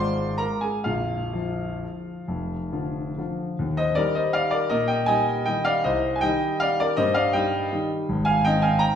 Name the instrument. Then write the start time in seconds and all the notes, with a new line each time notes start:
grand piano
Already playing: G#1 G#2 G#3 F4 C5 D5 C6 D6
0.38 A#4 A#5
0.61 G#4 G#5
0.84 A#0 A#1 F4 F5
1.33 F3 F4
2.28 F1 F2
2.72 D3 F3 F4
3.18 D3 F3 F4
3.59 D#2
3.77 C5 D#5
3.95 D#3 G3 D#4 A#4 D5
4.15 C5 D#5
4.33 D5 F5
4.51 A#4 D5
4.70 A#2 A#4 D#5
4.88 D#5 G5
5.06 G3 D#4 D#5 G#5
5.46 D#3 G3 D#4 D#5 G5
5.65 D5 F5
5.84 C2 C5 D#5
6.16 G#5
6.21 D#3 G3 D#4 D#5 G5
6.60 D5 F5
6.80 A#4 D5
6.97 G2 C5 D#5
7.14 D5 F5
7.33 G3 D#4 D#5 G5
7.72 D#3 G3 D#4
8.09 G#1
8.25 F5 G#5
8.45 D#3 C4 D#4 D#5 G5
8.62 F5 G#5
8.79 G5 A#5